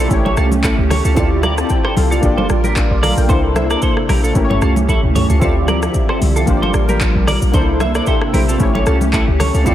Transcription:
Already playing: synth keys A#3 D4 G4 A4 D5 E5, downlifter
0.00 synth keys E4 C5, shaker
0.08 808-style bass A1, synth keys A3 C#4 E4 G4, analog synth pad A3 C#4 G4, kick, shaker
0.13 synth keys C#5
0.25 clean electric guitar A4 C#5, high conga
0.37 808-style bass C2, clean electric guitar F4 A4, cross-stick, shaker
0.52 high conga, shaker
0.64 clean electric guitar E4 A4, kick, clap, shaker
0.78 808-style bass C#2
0.90 clean electric guitar A4 C#5, cross-stick, open hi-hat, high conga, low conga, shaker
1.05 808-style bass C#2, clean electric guitar F4 A4, shaker
1.15 808-style bass D2, analog synth pad D3 C4 E4 F4, synth keys C4 E4 F4 G4, clean electric guitar F4 A4, kick, low conga, shaker
1.20 synth keys D5
1.43 clean electric guitar A#4 D5, cross-stick, high conga, shaker
1.58 synth keys C5 A5, cross-stick, shaker
1.69 synth keys G5, kick, shaker
1.85 clean electric guitar A4 C5, cross-stick
1.97 808-style bass C2, synth keys A4 F5, open hi-hat, high conga, shaker
2.11 synth keys F4 D5, clean electric guitar F4 A4, shaker
2.21 808-style bass G1, analog synth pad G3 F4 A#4, synth keys A#3 D4 F4 G4, kick, shaker
2.26 synth keys D5
2.38 clean electric guitar A4 C5, high conga
2.49 808-style bass A1, cross-stick, shaker
2.64 clean electric guitar G4 A#4, high conga, shaker
2.76 kick, clap, shaker
2.91 808-style bass A#1, synth keys F4 D5
3.03 synth keys A4 F5, clean electric guitar A#4 D5, cross-stick, open hi-hat, high conga, low conga, shaker
3.17 808-style bass A#1, synth keys A#4 G5, shaker
3.27 808-style bass C2, analog synth pad C3 A#3 D4 E4 A4, synth keys A#3 D4 E4 A4, clean electric guitar A4 C5, kick, low conga, shaker
3.32 synth keys C5
3.56 clean electric guitar C5 E5, cross-stick, high conga, shaker
3.70 clean electric guitar A#4 D5, cross-stick, shaker
3.82 clean electric guitar A4 C5, kick, shaker
3.97 cross-stick
4.09 808-style bass A#1, clean electric guitar G4 A#4, cross-stick, open hi-hat, high conga, shaker
4.24 clean electric guitar F4 A4, shaker
4.33 808-style bass A1, synth keys A3 C#4 E4 G4, analog synth pad A3 C#4 G4, kick, shaker
4.38 synth keys A#4
4.45 synth keys C#5
4.50 clean electric guitar A4 C#5, mid tom, high conga
4.62 808-style bass C2, clean electric guitar F4 A4, cross-stick, shaker
4.76 high conga, shaker
4.89 clean electric guitar E4 A4, kick, high tom, shaker
5.03 808-style bass C#2, mid tom
5.15 clean electric guitar A4 C#5, mid tom, open hi-hat, high conga, low conga, shaker
5.30 808-style bass C#2, clean electric guitar F4 A4, floor tom, shaker
5.39 808-style bass D2, analog synth pad D3 F3 C4 E5, synth keys C4 E4 F4 G4, clean electric guitar F4 A4, kick, low conga, shaker
5.44 synth keys D5
5.68 clean electric guitar A#4 D5, cross-stick, high conga, shaker
5.82 cross-stick, shaker
5.94 kick, shaker
6.09 clean electric guitar A4 C5, cross-stick
6.21 808-style bass C2, open hi-hat, high conga, shaker
6.36 clean electric guitar F4 A4, shaker
6.46 808-style bass G1, analog synth pad G3 A#4, synth keys A#3 D4 F4 G4, kick, shaker
6.51 synth keys C5
6.57 synth keys D5
6.62 clean electric guitar A4 C5, high conga
6.74 808-style bass A1, cross-stick, shaker
6.89 clean electric guitar G4 A#4, high conga, shaker
7.01 kick, clap, shaker
7.15 808-style bass A#1
7.27 clean electric guitar A#4 D5, cross-stick, open hi-hat, high conga, low conga, shaker
7.42 808-style bass A#1, shaker
7.52 808-style bass C2, analog synth pad C3 A#3 D4 E4 A4, synth keys A#3 D4 D#4 A4, clean electric guitar A4 C5, kick, low conga, shaker
7.57 synth keys E4 C5
7.80 clean electric guitar C5 E5, cross-stick, high conga, shaker
7.95 clean electric guitar A#4 D5, cross-stick, shaker
8.06 synth keys G4 E5, clean electric guitar A4 C5, kick, shaker
8.21 cross-stick
8.34 808-style bass A#1, synth keys E4 C5, clean electric guitar G4 A#4, open hi-hat, high conga, shaker
8.48 synth keys C4 A4, clean electric guitar F4 A4, shaker
8.58 808-style bass A1, synth keys A3 C#4 E4 G4, analog synth pad A3 C#4 G4, kick, shaker
8.63 synth keys C#5
8.75 clean electric guitar A4 C#5, high conga
8.86 808-style bass C2, clean electric guitar F4 A4, cross-stick, shaker
9.01 high conga, shaker
9.13 clean electric guitar E4 A4, kick, clap, shaker
9.28 808-style bass C#2
9.40 clean electric guitar A4 C#5, cross-stick, open hi-hat, high conga, low conga, shaker
9.54 808-style bass C#2, clean electric guitar F4 A4, shaker
9.64 808-style bass D2, analog synth pad D3 C4 E4 F4 G4, synth keys C4 E4 F4 G4, clean electric guitar F4 A4, kick, low conga, shaker
9.69 synth keys D5

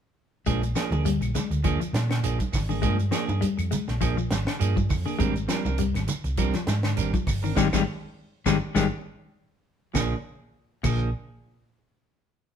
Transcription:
0.46 fingered electric bass A#1, clean electric guitar F3 G#3 A#3 D4 G#4, kick, closed hi-hat, shekere
0.63 muted clean electric guitar stroke, closed hi-hat, shekere
0.75 clean electric guitar F3 A#3 D4 G#4, snare, closed hi-hat, claves, shekere
0.90 fingered electric bass D2, clean electric guitar A#3 D4 G#4, high conga, shekere
1.05 clean electric guitar G3, closed hi-hat, shekere
1.21 fingered electric bass A#1, muted clean electric guitar stroke, closed hi-hat, claves, shekere
1.34 clean electric guitar G#3, muted clean electric guitar stroke, snare, closed hi-hat, high conga, low conga, shekere
1.50 fingered electric bass D2, muted clean electric guitar stroke, closed hi-hat, shekere
1.64 clean electric guitar F3 A#3 D4 G#4, kick, closed hi-hat, claves, shekere
1.80 clean electric guitar F3, muted clean electric guitar stroke, closed hi-hat, shekere
1.93 fingered electric bass A#2, muted clean electric guitar stroke, snare, closed hi-hat, high conga, shekere
2.10 clean electric guitar D3, snare, closed hi-hat, claves, shekere
2.23 fingered electric bass A#1, clean electric guitar F3 A#3 D4 G#4, closed hi-hat, shekere
2.39 muted clean electric guitar stroke, kick, closed hi-hat, high conga, shekere
2.52 fingered electric bass G#1, muted clean electric guitar stroke, kick, snare, open hi-hat, low conga, claves, shekere
2.69 clean electric guitar D3 A#3 D4 G#4, high conga, shekere
2.82 fingered electric bass G2, clean electric guitar F3 G#3 A#3 D4 G#4, kick, closed hi-hat, shekere
2.98 muted clean electric guitar stroke, closed hi-hat, shekere
3.11 clean electric guitar F3 A#3 D4 G#4, snare, closed hi-hat, claves, shekere
3.27 fingered electric bass G2, clean electric guitar A#3 D4 G#4, high conga, shekere
3.41 clean electric guitar G3, closed hi-hat, high conga, shekere
3.57 fingered electric bass F2, muted clean electric guitar stroke, closed hi-hat, claves, shekere
3.71 clean electric guitar G#3, muted clean electric guitar stroke, closed hi-hat, high conga, low conga, shekere
3.88 fingered electric bass A#1, muted clean electric guitar stroke, snare, shekere
4.01 clean electric guitar F3 A#3 D4 G#4, kick, closed hi-hat, claves, shekere
4.17 clean electric guitar F3, muted clean electric guitar stroke, shekere
4.30 fingered electric bass G#1, muted clean electric guitar stroke, snare, closed hi-hat, high conga, shekere
4.47 clean electric guitar D3, muted fingered electric bass stroke, snare, closed hi-hat, claves, shekere
4.59 fingered electric bass G2, clean electric guitar F3 A#3 D4 G#4, closed hi-hat, shekere
4.76 clean electric guitar F3, muted clean electric guitar stroke, kick, high conga, shekere
4.89 fingered electric bass F2, muted clean electric guitar stroke, kick, open hi-hat, low conga, claves, shekere
5.05 clean electric guitar D3 A#3 D4 G#4, shekere
5.19 fingered electric bass G#1, clean electric guitar G3 G#3 C4 D4 A#4, kick, closed hi-hat, shekere
5.35 muted clean electric guitar stroke, closed hi-hat, shekere
5.48 clean electric guitar F3 G3 C4 D4 A#4, snare, closed hi-hat, claves, shekere
5.65 fingered electric bass C2, clean electric guitar C4 D4 A#4, high conga, shekere
5.78 clean electric guitar G3, closed hi-hat, shekere
5.95 fingered electric bass G#1, muted clean electric guitar stroke, snare, closed hi-hat, claves, shekere
6.07 muted clean electric guitar stroke, closed hi-hat, high conga, low conga, shekere
6.24 fingered electric bass C2, muted clean electric guitar stroke, closed hi-hat, shekere
6.37 clean electric guitar F3 G3 C4 D4 A#4, kick, closed hi-hat, claves, shekere
6.53 clean electric guitar F3, muted clean electric guitar stroke, snare, closed hi-hat, shekere
6.67 fingered electric bass G#2, muted clean electric guitar stroke, snare, closed hi-hat, high conga, shekere
6.83 clean electric guitar D3, snare, closed hi-hat, claves, shekere
6.96 fingered electric bass G#1, clean electric guitar G3 C4 D4 A#4, closed hi-hat, shekere
7.13 clean electric guitar F3, muted clean electric guitar stroke, kick, closed hi-hat, high conga, shekere
7.27 fingered electric bass G1, muted clean electric guitar stroke, kick, open hi-hat, low conga, claves, shekere
7.43 clean electric guitar D#3 C4 D4 A#4, shekere
7.55 fingered electric bass G#1, clean electric guitar D#3 G3 G#3 C4 D#4, kick, snare, high conga, claves, shekere
7.72 fingered electric bass G#1, clean electric guitar D#3 G3 G#3 C4 D#4, kick, snare, high conga, claves, shekere
8.46 fingered electric bass G#1, clean electric guitar D#3 G3 G#3 C4 D#4, kick, snare, high conga, claves, shekere
8.75 fingered electric bass G#1, clean electric guitar D#3 G3 G#3 C4 D#4, kick, snare, high conga, claves, shekere
9.94 fingered electric bass A#1, clean electric guitar A#2 F3 A#3 D4 G#4, kick, snare, low conga, claves, shekere
10.83 fingered electric bass A#1, clean electric guitar A#2 F3 A#3 D4 G#4, kick, crash, low conga, claves, shekere

